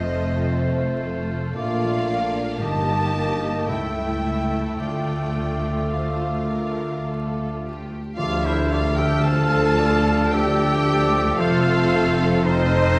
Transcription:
Already playing: double bass section F1, cello section F2, harp F3 A3 C4 F4 A4 F5, french horn section A3 C4, bassoon A3, viola section A3 F4, clarinet F4, violin section A4 C5 D#5, oboe C5, flute section D#5
0.01 harp C5
0.28 harp F5
0.52 harp C5
0.79 harp F4
1.05 harp C4
1.31 harp F4
1.55 double bass section A#1, harp A#2, cello section A#2, french horn section A3 D4, bassoon A3, viola section A#3 F4, clarinet F4, oboe D5, violin section D5 F5, flute section F5
1.83 harp F3
2.10 harp D4
2.36 harp F4
2.60 double bass section G1, cello section G2, harp G2, french horn section A#3 D#4, bassoon A#3, violin section G4 D#5 A5, clarinet G4, viola section G4, oboe D#5, flute section A5
2.88 harp G3
3.16 harp A#3
3.43 harp D#4
3.68 cello section C#2, double bass section C#2, harp C#3, viola section A3 E4, bassoon A3, french horn section A3 E4, clarinet A4, violin section A4 E5 G5, oboe E5, flute section G5
3.98 harp G3
4.25 harp A3
4.52 harp E4
4.78 cello section D2, double bass section D2, harp D3, french horn section A3 F4, viola section F4, violin section D5 G5, oboe D5, flute section G5
5.09 harp D4
5.37 harp A3
5.65 harp F4
5.90 french horn section A3 F4, harp A4, violin section C5 F5, flute section F5
6.21 harp F4
6.50 harp A4, violin section A#4
6.78 harp F4
7.05 harp A4, violin section A4
7.35 harp A3
7.63 harp D4, violin section G4
7.91 harp A3
8.16 cello section D2, double bass section D2, harp D3, french horn section F3 D4, bassoon A3, clarinet F4, violin section F4 F5, trumpet section A4, oboe D5, flute section F6, tam-tam
8.44 harp D4, clarinet E4, violin section E4 E5, oboe C5
8.70 harp A3, clarinet F4, violin section F4 F5, oboe D5
8.97 harp F4, clarinet G4, violin section G4 G5, oboe E5
9.24 bassoon C4, viola section F4, clarinet A4, harp A4, violin section A4 A5, oboe F5
9.51 harp F4
9.79 bassoon D4
10.05 harp F4
10.31 bassoon D4, viola section G4, clarinet G4, violin section G4 G5, harp A4, oboe E5, flute section E6
10.59 harp A3
10.87 flute section D6
11.12 harp A3
11.37 double bass section F1, cello section F2, harp F3, bassoon A3, french horn section C4, clarinet F4, violin section F4 F5, viola section A4, oboe C5, flute section F6
11.65 harp A3
12.18 harp F4
12.44 bassoon C4, clarinet D#4, violin section D#4 D#5, harp A4, oboe C5, viola section C5, flute section F6
12.71 harp C5

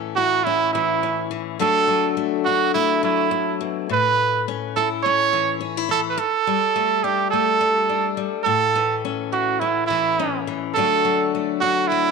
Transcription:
Already playing: steel-string acoustic guitar A2 E3 C#4
0.16 steel-string acoustic guitar E4, trumpet F#4
0.44 steel-string acoustic guitar C#4, trumpet E4
0.73 steel-string acoustic guitar E3, trumpet E4
1.03 steel-string acoustic guitar C#4
1.31 steel-string acoustic guitar E3
1.59 steel-string acoustic guitar D3 F#3 A3 D4 F#4, trumpet A4
1.88 steel-string acoustic guitar F#3
2.17 steel-string acoustic guitar A3
2.45 steel-string acoustic guitar D4, trumpet F#4
2.74 steel-string acoustic guitar A3, trumpet E4
3.03 steel-string acoustic guitar F#3, trumpet E4
3.31 muted steel-string acoustic guitar stroke
3.61 steel-string acoustic guitar B2
3.89 steel-string acoustic guitar A2, trumpet B4
4.48 steel-string acoustic guitar C#4
4.76 steel-string acoustic guitar E4, trumpet A4
5.03 steel-string acoustic guitar C#4, trumpet C#5
5.33 steel-string acoustic guitar E3
5.61 steel-string acoustic guitar C#4
5.77 steel-string acoustic guitar E4
5.89 steel-string acoustic guitar E3, trumpet A4
6.10 trumpet B4
6.18 trumpet A4, muted steel-string acoustic guitar stroke
6.47 steel-string acoustic guitar G3
6.76 steel-string acoustic guitar A3
7.04 steel-string acoustic guitar D4, trumpet G4
7.30 steel-string acoustic guitar A3, trumpet A4
7.61 steel-string acoustic guitar G3
7.89 steel-string acoustic guitar D4
8.17 steel-string acoustic guitar G3
8.44 steel-string acoustic guitar A2, trumpet A4
8.76 steel-string acoustic guitar E3
9.05 steel-string acoustic guitar C#4
9.32 steel-string acoustic guitar E4, trumpet F#4
9.60 steel-string acoustic guitar C#4, trumpet E4
9.87 steel-string acoustic guitar E3, trumpet E4
10.20 steel-string acoustic guitar C#4
10.47 steel-string acoustic guitar E3
10.75 steel-string acoustic guitar D3 F#3 A3 D4 F#4, trumpet A4
11.05 steel-string acoustic guitar F#3
11.35 steel-string acoustic guitar A3
11.61 steel-string acoustic guitar D4, trumpet F#4
11.88 trumpet E4
11.92 steel-string acoustic guitar A3

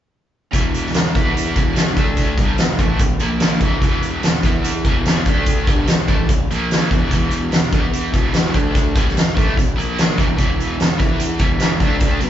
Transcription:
0.52 fingered electric bass E1, overdriven electric guitar E2 B2 E3, kick, closed hi-hat
0.74 closed hi-hat
0.86 snare
0.94 fingered electric bass E1, overdriven electric guitar E2 B2, snare, closed hi-hat
1.15 fingered electric bass E2, overdriven electric guitar E3 B3 E4, kick, closed hi-hat
1.37 closed hi-hat
1.56 fingered electric bass E1, overdriven electric guitar E2 B2 E3, kick, closed hi-hat
1.76 snare, closed hi-hat
1.96 fingered electric bass D2, overdriven electric guitar D3 A3 D4, kick, closed hi-hat
2.17 kick, closed hi-hat
2.38 fingered electric bass G1, overdriven electric guitar G2 D3 G3, kick, closed hi-hat
2.58 fingered electric bass E1, overdriven electric guitar E2 B2, snare, closed hi-hat
2.79 fingered electric bass A1, overdriven electric guitar A2 E3 A3, kick, closed hi-hat
2.99 fingered electric bass E1, overdriven electric guitar E2 B2, kick, closed hi-hat
3.19 fingered electric bass A#1, overdriven electric guitar A#2 F3 A#3, closed hi-hat
3.40 snare, closed hi-hat
3.60 fingered electric bass E1, overdriven electric guitar E2 B2 E3, kick, closed hi-hat
3.82 fingered electric bass E1, overdriven electric guitar E2 B2 E3, kick, closed hi-hat
4.02 closed hi-hat
4.23 fingered electric bass E1, overdriven electric guitar E2 B2, snare, closed hi-hat
4.43 fingered electric bass E2, overdriven electric guitar E3 B3 E4, kick, closed hi-hat
4.64 closed hi-hat
4.85 fingered electric bass E1, overdriven electric guitar E2 B2 E3, kick, closed hi-hat
5.05 snare, closed hi-hat
5.26 fingered electric bass D2, overdriven electric guitar D3 A3 D4, kick, closed hi-hat
5.46 kick, closed hi-hat
5.67 fingered electric bass G1, overdriven electric guitar G2 D3 G3, kick, closed hi-hat
5.87 fingered electric bass E1, overdriven electric guitar E2 B2, snare, closed hi-hat
6.08 fingered electric bass A1, overdriven electric guitar A2 E3 A3, kick, closed hi-hat
6.29 fingered electric bass E1, overdriven electric guitar E2 B2, kick, closed hi-hat
6.51 fingered electric bass A#1, overdriven electric guitar A#2 F3 A#3, closed hi-hat
6.71 snare, closed hi-hat
6.91 fingered electric bass E1, overdriven electric guitar E2 B2 E3, kick, closed hi-hat
7.11 fingered electric bass E1, overdriven electric guitar E2 B2 E3, kick, closed hi-hat
7.31 closed hi-hat
7.52 fingered electric bass E1, overdriven electric guitar E2 B2, snare, closed hi-hat
7.72 fingered electric bass E2, overdriven electric guitar E3 B3 E4, kick, closed hi-hat
7.93 closed hi-hat
8.13 fingered electric bass E1, overdriven electric guitar E2 B2 E3, kick, closed hi-hat
8.34 snare, closed hi-hat
8.54 fingered electric bass D2, overdriven electric guitar D3 A3 D4, kick, closed hi-hat
8.75 kick, closed hi-hat
8.95 fingered electric bass G1, overdriven electric guitar G2 D3 G3, kick, closed hi-hat
9.08 snare
9.14 fingered electric bass E1, overdriven electric guitar E2 B2, snare, closed hi-hat
9.35 fingered electric bass A1, overdriven electric guitar A2 E3 A3, kick, closed hi-hat
9.57 fingered electric bass E1, overdriven electric guitar E2 B2, kick, closed hi-hat
9.76 fingered electric bass A#1, overdriven electric guitar A#2 F3 A#3, closed hi-hat
9.98 snare, closed hi-hat
10.17 fingered electric bass E1, overdriven electric guitar E2 B2 E3, kick, closed hi-hat
10.36 fingered electric bass E1, overdriven electric guitar E2 B2 E3, kick, closed hi-hat
10.60 closed hi-hat
10.78 fingered electric bass E1, overdriven electric guitar E2 B2, snare, closed hi-hat
10.98 fingered electric bass E2, overdriven electric guitar E3 B3 E4, kick, closed hi-hat
11.19 closed hi-hat
11.39 fingered electric bass E1, overdriven electric guitar E2 B2 E3, kick, closed hi-hat
11.59 snare, closed hi-hat
11.80 fingered electric bass D2, overdriven electric guitar D3 A3 D4, kick, closed hi-hat
12.00 fingered electric bass D2, overdriven electric guitar D3 A3 D4, kick, closed hi-hat
12.20 fingered electric bass B1, overdriven electric guitar B2 F#3 B3, closed hi-hat

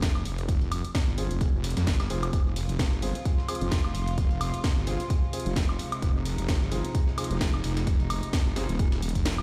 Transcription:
Already playing: wobble bass F1
0.02 kick, snare, closed hi-hat
0.15 high woodblock
0.25 wobble bass F1, closed hi-hat, open hi-hat
0.38 closed hi-hat
0.49 kick, closed hi-hat
0.61 wobble bass F1, closed hi-hat
0.72 closed hi-hat, open hi-hat, high woodblock
0.85 closed hi-hat
0.95 kick, snare, closed hi-hat
1.08 wobble bass G1
1.18 grand piano C4 F4 G#4, closed hi-hat, open hi-hat
1.31 wobble bass F1, closed hi-hat
1.41 kick, closed hi-hat
1.54 wobble bass F1
1.64 snare, closed hi-hat, open hi-hat
1.70 closed hi-hat
1.77 wobble bass F2, snare, closed hi-hat
1.87 wobble bass G1, kick, snare, closed hi-hat
2.00 snare, closed hi-hat, high woodblock
2.10 wobble bass F1, grand piano C4 F4 G#4, closed hi-hat, open hi-hat
2.23 closed hi-hat, high woodblock
2.33 wobble bass F1, string section C3 F3 G#3 F4, kick, closed hi-hat
2.56 snare, closed hi-hat, open hi-hat
2.69 wobble bass F1, closed hi-hat
2.79 kick, snare, closed hi-hat
2.92 wobble bass G1, snare
3.02 grand piano C4 F4 G#4, closed hi-hat, open hi-hat
3.15 closed hi-hat
3.25 kick, closed hi-hat
3.38 snare
3.49 grand piano C4 F4 G#4, closed hi-hat, open hi-hat, high woodblock
3.55 closed hi-hat
3.61 wobble bass F1, closed hi-hat
3.72 kick, snare, closed hi-hat
3.85 high woodblock
3.95 wobble bass F1, closed hi-hat, open hi-hat
4.08 closed hi-hat
4.18 kick, closed hi-hat
4.31 wobble bass F1, closed hi-hat
4.41 closed hi-hat, open hi-hat, high woodblock
4.54 closed hi-hat
4.64 kick, snare, closed hi-hat
4.77 wobble bass G1
4.87 grand piano C4 F4 G#4, closed hi-hat, open hi-hat
5.00 closed hi-hat
5.10 kick, closed hi-hat
5.33 grand piano C4 F4 G#4, closed hi-hat, open hi-hat
5.40 closed hi-hat
5.46 wobble bass F1, closed hi-hat
5.56 kick, snare, closed hi-hat
5.69 high woodblock
5.79 closed hi-hat, open hi-hat
5.92 closed hi-hat, high woodblock
6.02 wobble bass F1, string section D#4, kick, closed hi-hat
6.25 snare, closed hi-hat, open hi-hat
6.38 wobble bass F1, closed hi-hat
6.49 kick, snare, closed hi-hat
6.61 wobble bass G1, snare
6.72 grand piano C4 F4 G#4, closed hi-hat, open hi-hat
6.85 closed hi-hat
6.95 kick, closed hi-hat
7.08 snare
7.18 grand piano C4 F4 G#4, closed hi-hat, open hi-hat, high woodblock
7.24 closed hi-hat
7.31 wobble bass F1, closed hi-hat
7.41 kick, snare, closed hi-hat
7.54 high woodblock
7.64 wobble bass F1, snare, closed hi-hat, open hi-hat
7.77 snare, closed hi-hat
7.87 kick, closed hi-hat
8.00 wobble bass F1, closed hi-hat
8.10 closed hi-hat, open hi-hat, high woodblock
8.23 closed hi-hat
8.33 kick, snare, closed hi-hat
8.46 wobble bass G1
8.56 grand piano C4 F4 G#4, snare, closed hi-hat, open hi-hat
8.69 wobble bass D#1, closed hi-hat
8.79 kick, closed hi-hat
8.92 snare, closed hi-hat
9.02 wobble bass D#1, open hi-hat
9.09 closed hi-hat
9.15 wobble bass F1, kick, closed hi-hat
9.25 snare, closed hi-hat
9.38 high woodblock

